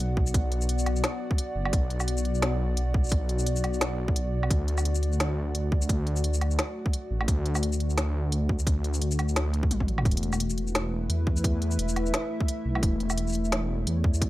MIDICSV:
0, 0, Header, 1, 4, 480
1, 0, Start_track
1, 0, Tempo, 346821
1, 476, Time_signature, 4, 2, 24, 8
1, 19784, End_track
2, 0, Start_track
2, 0, Title_t, "Analog synth pad"
2, 0, Program_c, 0, 89
2, 0, Note_on_c, 0, 59, 78
2, 0, Note_on_c, 0, 66, 83
2, 0, Note_on_c, 0, 74, 86
2, 0, Note_on_c, 0, 78, 86
2, 6235, Note_on_c, 0, 57, 91
2, 6907, Note_off_c, 0, 59, 0
2, 13914, Note_off_c, 0, 74, 0
2, 14292, Note_on_c, 0, 64, 96
2, 14365, Note_on_c, 0, 71, 82
2, 14992, Note_on_c, 0, 76, 75
2, 15028, Note_off_c, 0, 66, 0
2, 15114, Note_off_c, 0, 78, 0
2, 18596, Note_on_c, 0, 74, 81
2, 18696, Note_on_c, 0, 73, 83
2, 18727, Note_off_c, 0, 76, 0
2, 18852, Note_off_c, 0, 71, 0
2, 19784, Note_off_c, 0, 57, 0
2, 19784, Note_off_c, 0, 64, 0
2, 19784, Note_off_c, 0, 73, 0
2, 19784, Note_off_c, 0, 74, 0
2, 19784, End_track
3, 0, Start_track
3, 0, Title_t, "Detuned saw bass"
3, 0, Program_c, 1, 39
3, 0, Note_on_c, 1, 35, 97
3, 938, Note_off_c, 1, 35, 0
3, 954, Note_on_c, 1, 35, 96
3, 1418, Note_off_c, 1, 35, 0
3, 2152, Note_on_c, 1, 30, 100
3, 2377, Note_off_c, 1, 30, 0
3, 2393, Note_on_c, 1, 35, 102
3, 3818, Note_off_c, 1, 35, 0
3, 3835, Note_on_c, 1, 35, 98
3, 4778, Note_off_c, 1, 35, 0
3, 4794, Note_on_c, 1, 35, 91
3, 5258, Note_off_c, 1, 35, 0
3, 5275, Note_on_c, 1, 35, 99
3, 6218, Note_off_c, 1, 35, 0
3, 6235, Note_on_c, 1, 38, 100
3, 7658, Note_off_c, 1, 38, 0
3, 7678, Note_on_c, 1, 38, 97
3, 8620, Note_off_c, 1, 38, 0
3, 8637, Note_on_c, 1, 38, 95
3, 9099, Note_off_c, 1, 38, 0
3, 9837, Note_on_c, 1, 33, 97
3, 10059, Note_off_c, 1, 33, 0
3, 10075, Note_on_c, 1, 38, 100
3, 11498, Note_off_c, 1, 38, 0
3, 11515, Note_on_c, 1, 38, 99
3, 12459, Note_off_c, 1, 38, 0
3, 12476, Note_on_c, 1, 38, 95
3, 12939, Note_off_c, 1, 38, 0
3, 12954, Note_on_c, 1, 38, 96
3, 13418, Note_off_c, 1, 38, 0
3, 13436, Note_on_c, 1, 33, 99
3, 13899, Note_off_c, 1, 33, 0
3, 13913, Note_on_c, 1, 28, 99
3, 15337, Note_off_c, 1, 28, 0
3, 15355, Note_on_c, 1, 40, 97
3, 16299, Note_off_c, 1, 40, 0
3, 16313, Note_on_c, 1, 28, 96
3, 16778, Note_off_c, 1, 28, 0
3, 17514, Note_on_c, 1, 35, 100
3, 17738, Note_off_c, 1, 35, 0
3, 17754, Note_on_c, 1, 28, 99
3, 19178, Note_off_c, 1, 28, 0
3, 19194, Note_on_c, 1, 40, 97
3, 19784, Note_off_c, 1, 40, 0
3, 19784, End_track
4, 0, Start_track
4, 0, Title_t, "Drums"
4, 234, Note_on_c, 9, 36, 114
4, 370, Note_on_c, 9, 82, 64
4, 373, Note_off_c, 9, 36, 0
4, 475, Note_on_c, 9, 36, 126
4, 475, Note_on_c, 9, 42, 84
4, 509, Note_off_c, 9, 82, 0
4, 613, Note_off_c, 9, 36, 0
4, 614, Note_off_c, 9, 42, 0
4, 715, Note_on_c, 9, 42, 40
4, 851, Note_on_c, 9, 82, 64
4, 854, Note_off_c, 9, 42, 0
4, 955, Note_on_c, 9, 42, 69
4, 989, Note_off_c, 9, 82, 0
4, 1091, Note_on_c, 9, 82, 63
4, 1093, Note_off_c, 9, 42, 0
4, 1195, Note_on_c, 9, 42, 38
4, 1195, Note_on_c, 9, 77, 63
4, 1229, Note_off_c, 9, 82, 0
4, 1331, Note_on_c, 9, 82, 35
4, 1334, Note_off_c, 9, 42, 0
4, 1334, Note_off_c, 9, 77, 0
4, 1435, Note_on_c, 9, 38, 127
4, 1435, Note_on_c, 9, 42, 88
4, 1469, Note_off_c, 9, 82, 0
4, 1574, Note_off_c, 9, 38, 0
4, 1574, Note_off_c, 9, 42, 0
4, 1809, Note_on_c, 9, 36, 107
4, 1914, Note_on_c, 9, 42, 70
4, 1947, Note_off_c, 9, 36, 0
4, 2053, Note_off_c, 9, 42, 0
4, 2290, Note_on_c, 9, 77, 82
4, 2394, Note_on_c, 9, 36, 127
4, 2395, Note_on_c, 9, 42, 84
4, 2428, Note_off_c, 9, 77, 0
4, 2532, Note_off_c, 9, 36, 0
4, 2533, Note_off_c, 9, 42, 0
4, 2635, Note_on_c, 9, 42, 39
4, 2769, Note_on_c, 9, 77, 61
4, 2769, Note_on_c, 9, 82, 62
4, 2773, Note_off_c, 9, 42, 0
4, 2876, Note_on_c, 9, 42, 69
4, 2908, Note_off_c, 9, 77, 0
4, 2908, Note_off_c, 9, 82, 0
4, 3010, Note_on_c, 9, 82, 66
4, 3014, Note_off_c, 9, 42, 0
4, 3115, Note_on_c, 9, 42, 39
4, 3148, Note_off_c, 9, 82, 0
4, 3249, Note_on_c, 9, 82, 34
4, 3254, Note_off_c, 9, 42, 0
4, 3355, Note_on_c, 9, 38, 127
4, 3355, Note_on_c, 9, 42, 85
4, 3388, Note_off_c, 9, 82, 0
4, 3493, Note_off_c, 9, 38, 0
4, 3493, Note_off_c, 9, 42, 0
4, 3835, Note_on_c, 9, 42, 67
4, 3974, Note_off_c, 9, 42, 0
4, 4074, Note_on_c, 9, 36, 117
4, 4210, Note_on_c, 9, 82, 29
4, 4212, Note_off_c, 9, 36, 0
4, 4235, Note_off_c, 9, 82, 0
4, 4235, Note_on_c, 9, 82, 37
4, 4279, Note_off_c, 9, 82, 0
4, 4279, Note_on_c, 9, 82, 50
4, 4313, Note_on_c, 9, 36, 127
4, 4315, Note_on_c, 9, 42, 81
4, 4418, Note_off_c, 9, 82, 0
4, 4452, Note_off_c, 9, 36, 0
4, 4453, Note_off_c, 9, 42, 0
4, 4556, Note_on_c, 9, 42, 38
4, 4690, Note_on_c, 9, 82, 64
4, 4694, Note_off_c, 9, 42, 0
4, 4795, Note_on_c, 9, 42, 69
4, 4828, Note_off_c, 9, 82, 0
4, 4931, Note_on_c, 9, 82, 66
4, 4934, Note_off_c, 9, 42, 0
4, 5036, Note_on_c, 9, 42, 37
4, 5036, Note_on_c, 9, 77, 59
4, 5070, Note_off_c, 9, 82, 0
4, 5171, Note_on_c, 9, 82, 35
4, 5175, Note_off_c, 9, 42, 0
4, 5175, Note_off_c, 9, 77, 0
4, 5276, Note_on_c, 9, 38, 127
4, 5276, Note_on_c, 9, 42, 81
4, 5310, Note_off_c, 9, 82, 0
4, 5414, Note_off_c, 9, 38, 0
4, 5414, Note_off_c, 9, 42, 0
4, 5649, Note_on_c, 9, 36, 109
4, 5758, Note_on_c, 9, 42, 68
4, 5788, Note_off_c, 9, 36, 0
4, 5896, Note_off_c, 9, 42, 0
4, 6132, Note_on_c, 9, 77, 75
4, 6235, Note_on_c, 9, 36, 123
4, 6237, Note_on_c, 9, 42, 77
4, 6271, Note_off_c, 9, 77, 0
4, 6373, Note_off_c, 9, 36, 0
4, 6375, Note_off_c, 9, 42, 0
4, 6477, Note_on_c, 9, 42, 37
4, 6612, Note_on_c, 9, 77, 61
4, 6612, Note_on_c, 9, 82, 67
4, 6616, Note_off_c, 9, 42, 0
4, 6717, Note_on_c, 9, 42, 63
4, 6750, Note_off_c, 9, 77, 0
4, 6750, Note_off_c, 9, 82, 0
4, 6852, Note_on_c, 9, 82, 70
4, 6855, Note_off_c, 9, 42, 0
4, 6959, Note_on_c, 9, 42, 35
4, 6990, Note_off_c, 9, 82, 0
4, 7094, Note_on_c, 9, 82, 37
4, 7097, Note_off_c, 9, 42, 0
4, 7198, Note_on_c, 9, 38, 123
4, 7198, Note_on_c, 9, 42, 77
4, 7232, Note_off_c, 9, 82, 0
4, 7337, Note_off_c, 9, 38, 0
4, 7337, Note_off_c, 9, 42, 0
4, 7678, Note_on_c, 9, 42, 64
4, 7817, Note_off_c, 9, 42, 0
4, 7916, Note_on_c, 9, 36, 115
4, 8054, Note_off_c, 9, 36, 0
4, 8054, Note_on_c, 9, 82, 65
4, 8155, Note_on_c, 9, 36, 114
4, 8158, Note_on_c, 9, 42, 75
4, 8192, Note_off_c, 9, 82, 0
4, 8294, Note_off_c, 9, 36, 0
4, 8297, Note_off_c, 9, 42, 0
4, 8397, Note_on_c, 9, 42, 36
4, 8532, Note_on_c, 9, 82, 68
4, 8536, Note_off_c, 9, 42, 0
4, 8637, Note_on_c, 9, 42, 65
4, 8671, Note_off_c, 9, 82, 0
4, 8772, Note_on_c, 9, 82, 72
4, 8775, Note_off_c, 9, 42, 0
4, 8877, Note_on_c, 9, 42, 35
4, 8877, Note_on_c, 9, 77, 59
4, 8910, Note_off_c, 9, 82, 0
4, 9011, Note_on_c, 9, 82, 37
4, 9015, Note_off_c, 9, 42, 0
4, 9015, Note_off_c, 9, 77, 0
4, 9117, Note_on_c, 9, 38, 119
4, 9117, Note_on_c, 9, 42, 76
4, 9149, Note_off_c, 9, 82, 0
4, 9255, Note_off_c, 9, 38, 0
4, 9255, Note_off_c, 9, 42, 0
4, 9490, Note_on_c, 9, 36, 101
4, 9597, Note_on_c, 9, 42, 62
4, 9629, Note_off_c, 9, 36, 0
4, 9736, Note_off_c, 9, 42, 0
4, 9974, Note_on_c, 9, 77, 81
4, 10076, Note_on_c, 9, 36, 116
4, 10077, Note_on_c, 9, 42, 78
4, 10112, Note_off_c, 9, 77, 0
4, 10214, Note_off_c, 9, 36, 0
4, 10216, Note_off_c, 9, 42, 0
4, 10319, Note_on_c, 9, 42, 38
4, 10453, Note_on_c, 9, 77, 63
4, 10453, Note_on_c, 9, 82, 69
4, 10457, Note_off_c, 9, 42, 0
4, 10558, Note_on_c, 9, 42, 66
4, 10591, Note_off_c, 9, 77, 0
4, 10591, Note_off_c, 9, 82, 0
4, 10693, Note_on_c, 9, 82, 70
4, 10696, Note_off_c, 9, 42, 0
4, 10799, Note_on_c, 9, 42, 36
4, 10832, Note_off_c, 9, 82, 0
4, 10932, Note_on_c, 9, 82, 38
4, 10937, Note_off_c, 9, 42, 0
4, 11038, Note_on_c, 9, 38, 119
4, 11038, Note_on_c, 9, 42, 80
4, 11071, Note_off_c, 9, 82, 0
4, 11177, Note_off_c, 9, 38, 0
4, 11177, Note_off_c, 9, 42, 0
4, 11518, Note_on_c, 9, 42, 67
4, 11656, Note_off_c, 9, 42, 0
4, 11755, Note_on_c, 9, 36, 107
4, 11892, Note_on_c, 9, 82, 70
4, 11893, Note_off_c, 9, 36, 0
4, 11995, Note_on_c, 9, 36, 119
4, 11999, Note_on_c, 9, 42, 81
4, 12031, Note_off_c, 9, 82, 0
4, 12133, Note_off_c, 9, 36, 0
4, 12137, Note_off_c, 9, 42, 0
4, 12239, Note_on_c, 9, 42, 38
4, 12373, Note_on_c, 9, 82, 68
4, 12378, Note_off_c, 9, 42, 0
4, 12478, Note_on_c, 9, 42, 68
4, 12511, Note_off_c, 9, 82, 0
4, 12613, Note_on_c, 9, 82, 71
4, 12616, Note_off_c, 9, 42, 0
4, 12718, Note_on_c, 9, 42, 37
4, 12718, Note_on_c, 9, 77, 65
4, 12751, Note_off_c, 9, 82, 0
4, 12853, Note_on_c, 9, 82, 39
4, 12857, Note_off_c, 9, 42, 0
4, 12857, Note_off_c, 9, 77, 0
4, 12958, Note_on_c, 9, 38, 116
4, 12958, Note_on_c, 9, 42, 81
4, 12991, Note_off_c, 9, 82, 0
4, 13096, Note_off_c, 9, 38, 0
4, 13096, Note_off_c, 9, 42, 0
4, 13198, Note_on_c, 9, 42, 40
4, 13329, Note_on_c, 9, 36, 102
4, 13336, Note_off_c, 9, 42, 0
4, 13437, Note_on_c, 9, 42, 68
4, 13437, Note_on_c, 9, 48, 63
4, 13467, Note_off_c, 9, 36, 0
4, 13569, Note_on_c, 9, 36, 59
4, 13571, Note_off_c, 9, 48, 0
4, 13571, Note_on_c, 9, 48, 62
4, 13576, Note_off_c, 9, 42, 0
4, 13678, Note_on_c, 9, 42, 37
4, 13707, Note_off_c, 9, 36, 0
4, 13709, Note_off_c, 9, 48, 0
4, 13813, Note_on_c, 9, 45, 82
4, 13813, Note_on_c, 9, 77, 82
4, 13816, Note_off_c, 9, 42, 0
4, 13914, Note_on_c, 9, 36, 126
4, 13919, Note_on_c, 9, 42, 38
4, 13951, Note_off_c, 9, 45, 0
4, 13951, Note_off_c, 9, 77, 0
4, 13998, Note_off_c, 9, 42, 0
4, 13998, Note_on_c, 9, 42, 50
4, 14052, Note_off_c, 9, 36, 0
4, 14077, Note_off_c, 9, 42, 0
4, 14077, Note_on_c, 9, 42, 68
4, 14157, Note_off_c, 9, 42, 0
4, 14157, Note_on_c, 9, 42, 40
4, 14292, Note_on_c, 9, 77, 66
4, 14292, Note_on_c, 9, 82, 66
4, 14295, Note_off_c, 9, 42, 0
4, 14396, Note_on_c, 9, 42, 71
4, 14431, Note_off_c, 9, 77, 0
4, 14431, Note_off_c, 9, 82, 0
4, 14532, Note_on_c, 9, 82, 69
4, 14534, Note_off_c, 9, 42, 0
4, 14638, Note_on_c, 9, 42, 38
4, 14671, Note_off_c, 9, 82, 0
4, 14773, Note_on_c, 9, 82, 37
4, 14776, Note_off_c, 9, 42, 0
4, 14879, Note_on_c, 9, 38, 125
4, 14879, Note_on_c, 9, 42, 88
4, 14912, Note_off_c, 9, 82, 0
4, 15017, Note_off_c, 9, 38, 0
4, 15017, Note_off_c, 9, 42, 0
4, 15358, Note_on_c, 9, 42, 70
4, 15497, Note_off_c, 9, 42, 0
4, 15595, Note_on_c, 9, 36, 111
4, 15733, Note_on_c, 9, 82, 69
4, 15734, Note_off_c, 9, 36, 0
4, 15835, Note_on_c, 9, 36, 127
4, 15839, Note_on_c, 9, 42, 85
4, 15872, Note_off_c, 9, 82, 0
4, 15974, Note_off_c, 9, 36, 0
4, 15977, Note_off_c, 9, 42, 0
4, 16079, Note_on_c, 9, 42, 39
4, 16211, Note_on_c, 9, 82, 63
4, 16217, Note_off_c, 9, 42, 0
4, 16317, Note_on_c, 9, 42, 72
4, 16349, Note_off_c, 9, 82, 0
4, 16452, Note_on_c, 9, 82, 67
4, 16455, Note_off_c, 9, 42, 0
4, 16557, Note_on_c, 9, 42, 38
4, 16557, Note_on_c, 9, 77, 60
4, 16590, Note_off_c, 9, 82, 0
4, 16692, Note_on_c, 9, 82, 37
4, 16695, Note_off_c, 9, 42, 0
4, 16695, Note_off_c, 9, 77, 0
4, 16798, Note_on_c, 9, 38, 127
4, 16798, Note_on_c, 9, 42, 88
4, 16831, Note_off_c, 9, 82, 0
4, 16936, Note_off_c, 9, 38, 0
4, 16936, Note_off_c, 9, 42, 0
4, 17169, Note_on_c, 9, 36, 104
4, 17278, Note_on_c, 9, 42, 68
4, 17307, Note_off_c, 9, 36, 0
4, 17416, Note_off_c, 9, 42, 0
4, 17651, Note_on_c, 9, 77, 81
4, 17753, Note_on_c, 9, 36, 127
4, 17756, Note_on_c, 9, 42, 86
4, 17789, Note_off_c, 9, 77, 0
4, 17892, Note_off_c, 9, 36, 0
4, 17894, Note_off_c, 9, 42, 0
4, 17996, Note_on_c, 9, 42, 38
4, 18129, Note_on_c, 9, 77, 61
4, 18129, Note_on_c, 9, 82, 61
4, 18134, Note_off_c, 9, 42, 0
4, 18235, Note_on_c, 9, 42, 68
4, 18267, Note_off_c, 9, 77, 0
4, 18267, Note_off_c, 9, 82, 0
4, 18370, Note_on_c, 9, 82, 29
4, 18373, Note_off_c, 9, 42, 0
4, 18395, Note_off_c, 9, 82, 0
4, 18395, Note_on_c, 9, 82, 41
4, 18441, Note_off_c, 9, 82, 0
4, 18441, Note_on_c, 9, 82, 51
4, 18475, Note_on_c, 9, 42, 38
4, 18579, Note_off_c, 9, 82, 0
4, 18610, Note_on_c, 9, 82, 34
4, 18614, Note_off_c, 9, 42, 0
4, 18715, Note_on_c, 9, 38, 126
4, 18715, Note_on_c, 9, 42, 82
4, 18748, Note_off_c, 9, 82, 0
4, 18853, Note_off_c, 9, 38, 0
4, 18853, Note_off_c, 9, 42, 0
4, 19196, Note_on_c, 9, 42, 68
4, 19334, Note_off_c, 9, 42, 0
4, 19434, Note_on_c, 9, 36, 117
4, 19570, Note_on_c, 9, 82, 64
4, 19572, Note_off_c, 9, 36, 0
4, 19674, Note_on_c, 9, 36, 127
4, 19676, Note_on_c, 9, 42, 81
4, 19709, Note_off_c, 9, 82, 0
4, 19784, Note_off_c, 9, 36, 0
4, 19784, Note_off_c, 9, 42, 0
4, 19784, End_track
0, 0, End_of_file